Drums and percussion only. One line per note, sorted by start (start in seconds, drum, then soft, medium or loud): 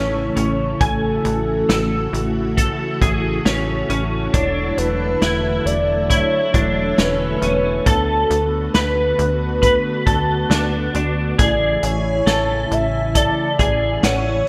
0.36 closed hi-hat soft
0.81 kick loud
0.81 closed hi-hat medium
1.25 closed hi-hat soft
1.69 snare medium
1.69 closed hi-hat medium
2.14 closed hi-hat soft
2.58 kick medium
2.58 closed hi-hat medium
3.02 kick medium
3.02 closed hi-hat soft
3.46 snare medium
3.46 closed hi-hat medium
3.90 closed hi-hat soft
4.34 kick loud
4.34 closed hi-hat medium
4.78 closed hi-hat soft
5.22 snare medium
5.22 closed hi-hat medium
5.67 closed hi-hat soft
6.10 kick medium
6.10 closed hi-hat medium
6.54 kick medium
6.54 closed hi-hat soft
6.98 snare medium
6.98 closed hi-hat medium
7.42 closed hi-hat soft
7.86 kick medium
7.86 closed hi-hat medium
8.30 closed hi-hat soft
8.74 snare medium
8.74 closed hi-hat medium
9.19 closed hi-hat soft
9.63 kick medium
9.63 closed hi-hat medium
10.07 kick medium
10.07 closed hi-hat soft
10.51 snare loud
10.51 closed hi-hat medium
10.94 closed hi-hat soft
11.39 kick loud
11.39 closed hi-hat medium
11.83 closed hi-hat soft
12.27 snare medium
12.27 closed hi-hat medium
12.71 closed hi-hat soft
13.15 kick medium
13.15 closed hi-hat medium
13.59 kick medium
13.59 closed hi-hat soft
14.03 snare loud
14.03 closed hi-hat medium